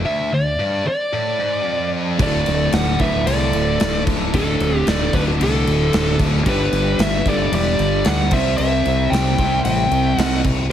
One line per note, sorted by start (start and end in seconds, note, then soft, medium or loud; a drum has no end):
0.05 0.31 D2 loud
0.05 0.31 E5 medium
0.32 0.54 D2 medium
0.32 0.86 D5 medium
0.60 0.85 G2 loud
0.85 1.90 D5 medium
0.85 muted distorted electric guitar stroke medium
1.13 1.39 A2 loud
1.39 1.65 G#2 loud
1.65 2.19 F2 loud
2.18 2.44 D1 medium
2.18 3.01 D2 loud
2.18 3.25 D2 medium
2.18 2.98 A2 medium
2.18 3.25 A2 medium
2.18 3.28 D3 loud
2.18 2.98 D3 loud
2.18 kick loud
2.18 crash medium
2.22 2.72 A4 medium
2.22 2.71 D5 medium
2.46 2.72 D1 medium
2.46 crash medium
2.72 2.97 D1 loud
2.72 3.00 F#5 loud
2.72 snare loud
2.72 crash medium
2.77 3.00 D5 medium
2.98 3.24 D1 loud
2.98 4.32 D2 medium
2.98 4.32 A2 medium
2.98 4.31 D3 medium
2.98 3.26 B4 medium
2.98 3.25 E5 medium
2.98 kick medium
2.98 crash medium
3.26 3.51 C2 loud
3.26 4.31 D2 medium
3.26 4.32 A2 loud
3.26 4.32 D3 medium
3.26 4.03 D5 medium
3.26 crash medium
3.30 4.04 A4 medium
3.52 3.77 D1 medium
3.52 crash medium
3.80 4.30 D1 medium
3.80 snare loud
3.80 crash medium
4.07 kick medium
4.07 crash medium
4.33 4.58 D1 loud
4.33 5.11 D2 loud
4.33 5.38 D2 medium
4.33 5.12 A2 loud
4.33 5.39 A2 loud
4.33 5.39 D3 medium
4.33 5.13 D3 loud
4.33 4.83 D4 medium
4.33 4.78 A4 loud
4.33 kick medium
4.33 crash medium
4.60 4.84 D1 medium
4.60 crash medium
4.78 4.89 G4 loud
4.87 5.11 D1 medium
4.87 5.12 A4 medium
4.87 5.15 D5 loud
4.87 snare loud
4.87 crash medium
5.13 5.37 D1 loud
5.13 6.46 D2 medium
5.13 6.46 A2 medium
5.13 6.45 D3 medium
5.13 5.22 F#4 medium
5.13 5.22 B4 loud
5.13 kick medium
5.13 crash medium
5.39 5.64 C2 loud
5.39 6.44 D2 medium
5.39 6.45 A2 medium
5.39 6.45 D3 loud
5.39 6.16 D4 medium
5.39 6.17 A4 medium
5.39 crash loud
5.67 5.91 D1 medium
5.67 crash medium
5.93 6.43 D1 medium
5.93 snare loud
5.93 crash medium
6.20 kick medium
6.20 crash medium
6.45 6.70 G1 loud
6.45 7.50 G2 medium
6.45 7.25 G2 loud
6.45 7.51 D3 medium
6.45 7.25 D3 loud
6.45 7.54 G3 medium
6.45 6.96 G4 medium
6.45 7.02 B4 medium
6.45 kick loud
6.45 crash medium
6.49 7.27 G3 loud
6.72 6.96 G1 medium
6.72 crash medium
6.99 7.23 G1 medium
6.99 7.24 B4 medium
6.99 7.28 E5 loud
6.99 snare loud
6.99 crash medium
7.26 7.50 G1 loud
7.26 8.32 D3 medium
7.26 8.32 G3 medium
7.26 7.51 A4 medium
7.26 7.54 D5 medium
7.26 kick medium
7.26 crash medium
7.30 8.33 G2 medium
7.51 7.76 E1 loud
7.51 8.30 G2 medium
7.51 8.31 D3 medium
7.51 8.30 G3 medium
7.51 8.02 G4 medium
7.51 8.08 D5 loud
7.51 crash medium
7.79 8.03 G1 medium
7.79 crash medium
8.05 8.30 D2 medium
8.05 8.30 D5 medium
8.05 8.34 F#5 medium
8.05 snare loud
8.05 crash medium
8.30 8.56 C2 medium
8.30 9.36 C3 medium
8.30 9.10 C3 medium
8.30 9.37 G3 loud
8.30 9.37 C4 loud
8.30 8.56 C5 medium
8.30 8.56 E5 loud
8.30 kick loud
8.30 crash loud
8.35 9.11 G3 loud
8.35 9.12 C4 loud
8.57 8.83 C2 loud
8.57 9.09 C5 medium
8.57 9.13 E5 loud
8.57 crash medium
8.85 9.10 C2 medium
8.85 crash medium
9.09 9.36 C2 medium
9.09 10.43 C3 medium
9.09 10.44 G3 medium
9.09 9.60 E5 medium
9.09 9.61 G5 loud
9.09 crash medium
9.13 10.44 C4 medium
9.13 snare loud
9.38 9.63 C2 loud
9.38 10.45 C3 medium
9.38 10.44 G3 medium
9.38 10.43 C4 medium
9.38 kick medium
9.38 crash medium
9.64 9.89 A1 loud
9.64 10.16 E5 medium
9.64 10.17 G5 medium
9.64 crash medium
9.91 10.16 C2 medium
9.91 crash medium
10.16 10.67 C2 medium
10.16 10.41 D#5 medium
10.16 10.41 F#5 medium
10.16 snare loud
10.16 crash loud
10.44 kick loud
10.44 crash medium